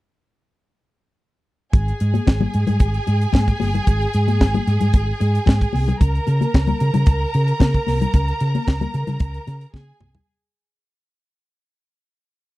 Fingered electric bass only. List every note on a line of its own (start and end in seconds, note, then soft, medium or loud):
1.74 1.91 G#1 loud
2.01 2.18 G#2 loud
2.28 2.45 G#1 medium
2.55 2.63 G#2 medium
2.69 2.77 G#2 medium
2.81 2.98 G#1 medium
3.08 3.25 G#2 loud
3.34 3.51 G#2 loud
3.61 3.78 G1 medium
3.88 4.04 G#1 loud
4.15 4.43 G#2 medium
4.41 4.58 G#1 loud
4.67 4.76 G#2 loud
4.82 4.90 G#2 medium
4.94 5.11 G#1 medium
5.21 5.38 G#2 loud
5.48 5.64 G#2 medium
5.74 5.91 C2 medium
6.01 6.18 C#2 loud
6.28 6.44 C#3 medium
6.55 6.71 C#2 loud
6.81 6.90 C#3 medium
6.95 7.03 C#3 loud
7.07 7.24 C#2 medium
7.35 7.51 C#3 loud
7.61 7.77 C#3 medium
7.88 8.05 C2 medium
8.14 8.31 C#2 loud
8.41 8.58 C#3 medium
8.68 8.85 C#2 medium
8.94 9.03 C#3 medium
9.08 9.16 C#3 medium
9.21 9.37 C#2 medium
9.47 9.64 C#3 loud
9.74 9.91 C#3 loud
10.01 10.18 C2 medium